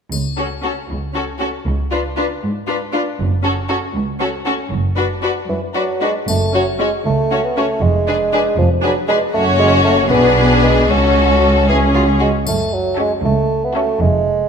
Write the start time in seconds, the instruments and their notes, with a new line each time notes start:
0.12 double bass section C#2, cello section C#2, triangle
0.37 viola section C#4, violin section F#4 A4
0.62 viola section C#4, violin section F#4 A4
0.89 cello section C#2
1.14 viola section C#4, violin section F#4 A4
1.39 viola section C#4, violin section F#4 A4
1.65 cello section C#2, double bass section C#2
1.91 viola section D4, violin section F4 B4
2.16 viola section D4, violin section F4 B4
2.43 cello section G#2
2.67 viola section D4, violin section F4 B4
2.92 viola section D4, violin section F4 B4
3.19 double bass section F#1, cello section F#2
3.43 viola section C#4, violin section F#4 A4
3.69 viola section C#4, violin section F#4 A4
3.95 cello section C#2
4.20 viola section C#4, violin section F#4 A4
4.45 viola section C#4, violin section F#4 A4
4.71 double bass section F#1, cello section F#2
4.97 viola section D4, violin section F#4 B4
5.23 viola section D4, violin section F#4 B4
5.48 cello section F#2, bassoon E3
5.75 bassoon F#3, viola section D4, violin section F#4 B4
6.01 bassoon G#3, viola section D4, violin section F#4 B4
6.28 double bass section F#1, cello section F#2, bassoon A3, triangle
6.53 bassoon F#3, viola section C#4, violin section F#4 C#5
6.79 bassoon G#3, viola section C#4, violin section F#4 C#5
7.05 double bass section C#2, cello section C#2, bassoon A3
7.31 viola section C#4, violin section F#4 C#5
7.44 bassoon B3
7.56 bassoon A3, viola section C#4, violin section F#4 C#5
7.82 double bass section F1, cello section F2, bassoon G#3
8.07 viola section D4, violin section G#4 B4
8.33 viola section D4, violin section G#4 B4
8.58 double bass section F1, cello section F2, bassoon F3
8.83 bassoon F#3, viola section D4, violin section G#4 B4
9.08 bassoon G#3, viola section D4, violin section G#4 B4
9.33 double bass section F#1, cello section F#2, bassoon A3, viola section C#4, violin section F#4 C#5
9.59 bassoon G#3
9.84 bassoon A3
10.10 double bass section B1, cello section B2, bassoon B3, viola section D4, violin section G#4 B4
10.64 bassoon G#3
10.90 double bass section C#2, cello section C#2, viola section C#4, bassoon C#4, violin section F#4 A4
11.68 bassoon E3, viola section C#4, violin section G#4
11.94 bassoon F#3, violin section F4
12.19 bassoon G#3, violin section F#4
12.46 double bass section F#1, cello section F#2, bassoon A3, triangle
12.73 bassoon F#3
12.98 bassoon G#3, viola section C#4, violin section F#4 A4
13.25 cello section C#2, double bass section C#2, bassoon A3
13.64 bassoon B3
13.76 bassoon A3, viola section C#4, violin section F#4 A4
14.01 double bass section F1, cello section F2, bassoon G#3